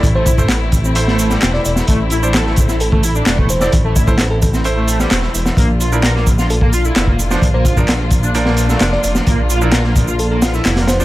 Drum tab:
HH |x-x-x-x-x-x-x-x-|x-x-x-x-x-x-x-x-|x-x-x-x-x-x-x-x-|x-x-x-x-x-x-x-x-|
SH |x-xxx-xxx-xxx-xx|x-xxx-xxx-xxx-xx|x-xxx-xxx-xxx-xx|x-xxx-xxx-xxx-xx|
CP |----x-------x---|----x-------x---|----x-------x---|----x-------x---|
SD |----o----o-ooo-o|----oo-o----o--o|----o--o---ooo-o|----oo-o----o--o|
BD |o-oo--o---------|o-----o--o---o--|o-oo--o---------|o-----o--o---o--|

HH |x-x-x-x-x-x-x-x-|x-x-x-x-x-x-xxx-|
SH |x-xxx-xxx-xxx-xx|x-xxx-xxx-xxx-xx|
CP |----x-------x---|----x-------x---|
SD |----o----o-ooo-o|----oo----oooooo|
BD |o-oo--o---------|o-----o---------|